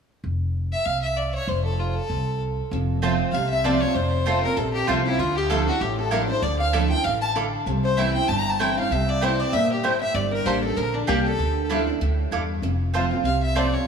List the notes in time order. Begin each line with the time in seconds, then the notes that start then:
0.24 F1
0.73 E5
0.86 C2 F5
1.02 E5
1.17 D5
1.35 C#5
1.47 F1 C5
1.65 A4
1.79 F4
1.95 A4
2.10 C2
2.71 F1 F2
3.02 F3 A3 C4 F4 C5 A5
3.32 C2 C3 F5
3.50 E5
3.64 F3 A3 C4 F4 C5 D5 A5
3.81 C4 F4 C#5
3.95 F1 F2 C5
4.26 F3 A3 C4 F4 C5 A5
4.43 C4 F4 A#4
4.57 A#1 C3 A4
4.73 G4
4.87 C2 F3 A3 C4 F4 C5 A5
5.05 C4 E4 F4
5.19 D2 D3 F4
5.36 G4
5.50 F3 A3 D4 E4 A4 F5 D6
5.67 D4 E4 F#4
5.81 A1 A2 G4
5.98 A4
6.11 F3 A3 D4 E4 A4 A#4 F5 D6
6.28 D4 E4 C5
6.42 D2 D3 D5
6.59 F5
6.73 F3 A3 D4 E4 A4 E5 F5 D6
6.90 D4 E4 G5
7.04 A1 E3 F5
7.21 A5
7.35 D3 E4 A4 F5 D6
7.66 C2 C3
7.84 C5
7.97 E3 A3 C4 E4 C5 E5 G5
8.13 C4 E4 G5
8.28 G1 G2 A5
8.39 A#5
8.50 A5
8.59 E3 A3 C4 E4 C5 G5
8.77 C4 E4 F5
8.90 C2 C3 E5
9.08 D5
9.21 E3 A3 C4 E4 C5 G5
9.40 D5
9.52 G1 A#2 E5
9.70 G4, muted resonator guitar played with a steel bar stroke
9.83 A2 A3 E4 C5 G5
10.01 E5
10.14 G1 G2 D5
10.31 A#4
10.45 A1 G3 A#3 D4 G4 A4 C5 D5 A5
10.62 D4 A4
10.76 A#1 D3 A#4
10.94 D4
11.07 C2 G3 A#3 D4 G4 A4 D5 A5
11.24 D4 A4
11.38 D2 D3
11.69 F3 A3 D4 E4 A4 F5 D6
11.87 D4 E4
12.01 D2 A2
12.31 E2 G2 E4 A4 F5 D6
12.62 F1 F2
12.94 F3 A3 C4 F4 C5 A5
13.11 C4 F4
13.24 C2 C3 F5
13.43 E5
13.55 F3 A3 C4 F4 C5 D5 A5
13.72 C4 F4 C#5